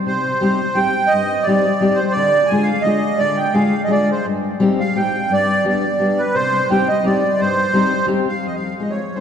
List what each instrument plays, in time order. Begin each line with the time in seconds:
0.06 steel-string acoustic guitar C3, accordion C5
0.41 steel-string acoustic guitar G3 C4 D#4 G4
0.75 steel-string acoustic guitar G3 C4 D#4 G4, accordion G5
1.07 accordion D#5
1.12 steel-string acoustic guitar G2
1.42 accordion D5
1.47 steel-string acoustic guitar G3 C4 D#4 G4
1.81 steel-string acoustic guitar G3 C4 D#4 G4
1.95 accordion C5
2.11 accordion D5
2.17 steel-string acoustic guitar D3
2.46 accordion G#5
2.51 steel-string acoustic guitar G#3 D4 F4 G#4
2.62 accordion F5
2.81 steel-string acoustic guitar G#3, accordion D#5
2.86 steel-string acoustic guitar D4 F4 G#4
3.18 steel-string acoustic guitar D3, accordion D5
3.37 accordion G5
3.54 steel-string acoustic guitar G#3 D4 F4 G#4, accordion F5
3.84 accordion D#5
3.88 steel-string acoustic guitar G#3 D4 F4 G#4, accordion D5
4.11 accordion C5
4.25 steel-string acoustic guitar G2
4.60 steel-string acoustic guitar G3 C4 D#4 G4
4.80 accordion F5
4.96 steel-string acoustic guitar G3 C4 D#4 G4, accordion G5
5.30 steel-string acoustic guitar G2, accordion D5
5.65 steel-string acoustic guitar G3 B3 D4 G4, accordion D5
6.00 steel-string acoustic guitar G3 B3 D4 G4
6.18 accordion B4
6.34 steel-string acoustic guitar C3, accordion C5
6.70 steel-string acoustic guitar G3 C4 D#4 G4, accordion G5
6.88 accordion D#5
7.04 steel-string acoustic guitar G3 C4 D#4 G4, accordion D5
7.40 steel-string acoustic guitar G2, accordion C5
7.73 steel-string acoustic guitar G3 C4 D#4 G4
8.07 steel-string acoustic guitar G3 C4 D#4 G4
8.29 accordion F5
8.46 steel-string acoustic guitar F2, accordion D#5
8.55 accordion F5
8.80 steel-string acoustic guitar G#3 C4 D#4 F4, accordion D#5
8.90 accordion C#5
9.15 steel-string acoustic guitar G#3 C4 D#4, accordion C5